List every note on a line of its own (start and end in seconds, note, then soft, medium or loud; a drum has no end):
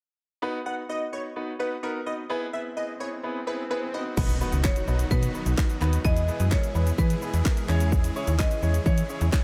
0.42 0.57 B3 loud
0.42 0.57 D#4 loud
0.42 0.57 F#4 medium
0.42 0.57 B4 loud
0.42 swell medium
0.65 0.81 B3 medium
0.65 0.81 D#4 medium
0.65 0.81 F#4 medium
0.65 0.81 B4 medium
0.65 0.75 F#5 medium
0.89 1.04 B3 medium
0.89 1.04 D#4 medium
0.89 1.04 F#4 medium
0.89 1.04 B4 medium
0.89 1.07 D#5 medium
1.12 1.28 B3 medium
1.12 1.28 D#4 medium
1.12 1.28 F#4 medium
1.12 1.28 B4 medium
1.12 1.22 C#5 medium
1.36 1.51 B3 medium
1.36 1.51 D#4 medium
1.36 1.51 F#4 medium
1.36 1.51 B4 medium
1.59 1.74 B3 medium
1.59 1.74 D#4 medium
1.59 1.75 F#4 medium
1.59 1.78 B4 medium
1.59 1.75 B4 medium
1.83 1.98 B3 medium
1.83 1.98 D#4 medium
1.83 1.98 F#4 medium
1.83 1.98 A#4 loud
1.83 1.92 B4 medium
2.06 2.21 B3 medium
2.06 2.21 D#4 medium
2.06 2.21 F#4 medium
2.06 2.22 B4 medium
2.06 2.15 D#5 medium
2.30 2.45 B3 loud
2.30 2.45 E4 loud
2.30 2.45 G#4 loud
2.30 2.45 B4 loud
2.53 2.68 B3 medium
2.53 2.68 E4 medium
2.53 2.68 G#4 medium
2.53 2.68 B4 medium
2.53 2.62 E5 medium
2.76 2.92 B3 medium
2.76 2.92 E4 medium
2.76 2.92 G#4 medium
2.76 2.92 B4 medium
2.76 2.95 D#5 medium
3.00 3.15 B3 medium
3.00 3.15 E4 medium
3.00 3.15 G#4 medium
3.00 3.15 B4 medium
3.00 3.09 C#5 medium
3.23 3.38 B3 medium
3.23 3.39 E4 medium
3.23 3.39 G#4 medium
3.23 3.39 B4 medium
3.47 3.62 B3 medium
3.47 3.62 E4 medium
3.47 3.62 G#4 medium
3.47 3.65 B4 medium
3.47 3.62 B4 loud
3.70 3.85 B3 medium
3.70 3.85 E4 medium
3.70 3.85 G#4 medium
3.70 3.86 B4 medium
3.70 3.80 B4 medium
3.94 4.13 B3 medium
3.94 4.13 D#4 medium
3.94 4.13 F#4 medium
3.94 4.13 B4 medium
3.94 4.03 D#5 medium
4.17 4.42 B1 loud
4.17 6.03 B2 medium
4.17 6.03 D#3 medium
4.17 6.03 F#3 medium
4.17 4.32 B3 loud
4.17 4.32 D#4 loud
4.17 6.03 D#4 medium
4.17 6.03 F#4 medium
4.17 4.32 F#4 loud
4.17 4.32 B4 loud
4.17 kick loud
4.17 crash loud
4.17 impact medium
4.17 shaker medium
4.29 closed hi-hat soft
4.29 shaker soft
4.41 4.56 B3 medium
4.41 4.56 D#4 medium
4.41 4.56 F#4 medium
4.41 4.56 B4 loud
4.41 shaker soft
4.52 4.69 C#2 medium
4.52 closed hi-hat medium
4.52 shaker medium
4.64 4.79 B3 medium
4.64 4.79 D#4 medium
4.64 4.79 F#4 medium
4.64 4.79 B4 medium
4.64 5.12 C#5 medium
4.64 kick loud
4.64 snare medium
4.64 clap loud
4.64 shaker medium
4.76 closed hi-hat medium
4.76 shaker medium
4.87 5.04 B1 medium
4.87 5.03 B3 medium
4.87 5.03 D#4 medium
4.87 5.03 F#4 medium
4.87 5.03 B4 medium
4.87 shaker soft
4.99 closed hi-hat medium
4.99 shaker medium
5.11 5.28 B2 loud
5.11 5.26 B3 loud
5.11 5.26 D#4 medium
5.11 5.26 F#4 medium
5.11 6.01 B4 medium
5.11 5.26 B4 loud
5.11 kick loud
5.11 shaker medium
5.23 closed hi-hat medium
5.23 shaker medium
5.34 5.49 B3 medium
5.34 5.49 D#4 medium
5.34 5.50 F#4 medium
5.34 5.50 B4 medium
5.34 shaker medium
5.46 5.55 B1 loud
5.46 closed hi-hat medium
5.46 shaker medium
5.57 5.73 B3 medium
5.57 5.73 D#4 medium
5.57 5.73 F#4 medium
5.57 5.73 B4 medium
5.57 kick loud
5.57 snare loud
5.57 clap loud
5.57 shaker medium
5.70 closed hi-hat medium
5.70 shaker medium
5.81 5.98 D#2 loud
5.81 5.96 B3 medium
5.81 5.96 D#4 medium
5.81 5.96 F#4 medium
5.81 5.96 B4 loud
5.81 clap medium
5.81 shaker soft
5.93 closed hi-hat medium
5.93 shaker medium
6.04 6.30 E2 loud
6.04 7.67 B2 medium
6.04 9.44 E3 medium
6.04 9.44 G#3 medium
6.04 6.20 B3 medium
6.04 9.44 E4 medium
6.04 6.20 E4 medium
6.04 9.44 G#4 medium
6.04 6.20 G#4 medium
6.04 6.20 B4 loud
6.04 6.53 D#5 loud
6.04 kick loud
6.04 shaker medium
6.17 closed hi-hat medium
6.17 shaker soft
6.28 6.43 B3 medium
6.28 6.43 E4 medium
6.28 6.43 G#4 medium
6.28 6.43 B4 medium
6.28 shaker soft
6.40 6.57 F#2 medium
6.40 closed hi-hat medium
6.40 shaker medium
6.51 6.67 B3 medium
6.51 6.67 E4 medium
6.51 6.67 G#4 medium
6.51 6.67 A#4 medium
6.51 7.00 C#5 medium
6.51 kick loud
6.51 snare medium
6.51 clap loud
6.51 shaker medium
6.64 closed hi-hat medium
6.64 shaker medium
6.75 6.92 E2 loud
6.75 6.90 B3 medium
6.75 6.90 E4 medium
6.75 6.90 G#4 medium
6.75 6.90 B4 medium
6.75 shaker soft
6.87 closed hi-hat medium
6.87 shaker medium
6.98 7.15 E3 loud
6.98 7.13 B3 loud
6.98 7.13 E4 medium
6.98 7.14 G#4 medium
6.98 7.14 B4 loud
6.98 7.65 B4 medium
6.98 kick loud
6.98 shaker medium
7.10 closed hi-hat medium
7.10 shaker medium
7.22 7.37 B3 medium
7.22 7.37 E4 medium
7.22 7.37 G#4 medium
7.22 7.37 B4 medium
7.22 shaker medium
7.34 7.42 E2 medium
7.34 closed hi-hat medium
7.34 shaker medium
7.45 7.60 B3 medium
7.45 7.60 E4 medium
7.45 7.60 G#4 medium
7.45 7.61 A#4 medium
7.45 kick loud
7.45 snare loud
7.45 clap loud
7.45 shaker medium
7.57 closed hi-hat medium
7.57 shaker medium
7.69 8.11 E2 medium
7.69 9.44 C#3 medium
7.69 8.06 C#4 loud
7.69 8.06 E4 medium
7.69 8.06 G#4 medium
7.69 8.06 C#5 loud
7.69 clap medium
7.69 shaker medium
7.80 closed hi-hat medium
7.80 shaker medium
7.92 kick loud
7.92 shaker medium
8.04 closed hi-hat medium
8.04 shaker medium
8.15 8.31 C#4 medium
8.15 8.31 E4 medium
8.15 8.31 G#4 medium
8.15 8.31 C#5 loud
8.15 shaker soft
8.27 8.44 D#2 loud
8.27 closed hi-hat medium
8.27 shaker medium
8.39 8.54 C#4 medium
8.39 8.54 E4 medium
8.39 8.54 G#4 medium
8.39 8.54 B4 medium
8.39 8.87 D#5 medium
8.39 kick loud
8.39 snare medium
8.39 clap loud
8.39 shaker medium
8.51 closed hi-hat medium
8.51 shaker medium
8.62 8.79 E2 medium
8.62 8.78 C#4 medium
8.62 8.78 E4 medium
8.62 8.78 G#4 medium
8.62 8.78 C#5 medium
8.62 shaker soft
8.74 closed hi-hat medium
8.74 shaker medium
8.86 9.03 E3 medium
8.86 9.01 C#4 medium
8.86 9.01 E4 medium
8.86 9.01 G#4 medium
8.86 9.44 C#5 medium
8.86 9.01 C#5 loud
8.86 kick loud
8.86 shaker medium
8.98 closed hi-hat medium
8.98 shaker medium
9.09 9.24 C#4 medium
9.09 9.24 E4 medium
9.09 9.25 G#4 medium
9.09 9.25 C#5 medium
9.09 shaker soft
9.21 9.30 E2 loud
9.21 closed hi-hat medium
9.21 shaker medium
9.32 9.44 C#4 medium
9.32 9.44 E4 medium
9.32 9.44 G#4 medium
9.32 9.44 C#5 medium
9.32 kick loud
9.32 snare loud
9.32 clap loud
9.32 shaker medium